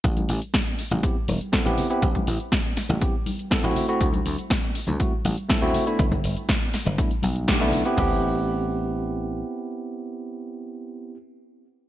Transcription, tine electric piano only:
X:1
M:4/4
L:1/16
Q:1/4=121
K:Ador
V:1 name="Tine electric piano"
z8 [B,CEG] z3 [B,CEA] [B,CEG]2 [B,CEG] | z8 [B,CEG] z3 [B,CEA] [A,CEF]2 [A,CEF] | z8 [A,CEF] z3 [A,CEA] [A,CEF]2 [A,B,DE] | z8 [A,B,DE] z3 [A,B,DG] [A,B,DE]2 [B,CEG] |
[B,CEG]16- | [B,CEG]16 |]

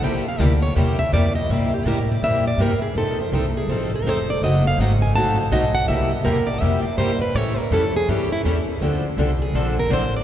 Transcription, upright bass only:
X:1
M:4/4
L:1/8
Q:"Swing" 1/4=164
K:Cmix
V:1 name="Upright bass" clef=bass
C,,2 D,,2 E,,2 F,,2 | G,,2 A,,2 B,,2 G,,2 | F,,2 C,,2 A,,,2 F,,,2 | ^F,,,2 _A,,,2 =A,,,2 =B,,,2 |
C,,2 E,,2 F,, z G,,2 | A,, z F,,2 G,,2 E,,2 | D,,2 C,,2 B,,,2 A,,,2 |]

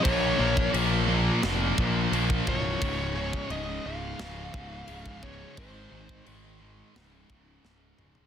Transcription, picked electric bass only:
X:1
M:4/4
L:1/8
Q:1/4=87
K:Dblyd
V:1 name="Picked electric bass" clef=bass
B,,, B,,, B,,,2 F,,, B,,, B,,, C,,, | D,,,2 D,,, D,,, D,,, D,,, D,,,2 | A,,, A,,, A,,,2 D,,, D,,, D,,, D,,, |]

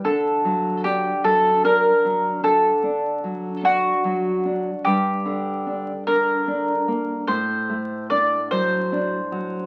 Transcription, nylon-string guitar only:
X:1
M:12/8
L:1/8
Q:3/8=50
K:Dphr
V:1 name="Nylon-string guitar" clef=bass
D, ^F, D F, D F, D, D F, D F, D | G,, D, D D, D B, A,, A, D ^F, D F, |]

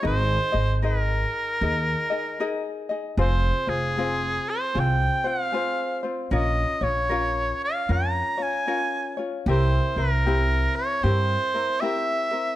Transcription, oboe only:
X:1
M:4/4
L:1/8
Q:"Swing" 1/4=76
K:Fm
V:1 name="Oboe"
c2 B4- B z | c A2 c g f2 z | e d2 f b a2 z | c B2 d c2 =e2 |]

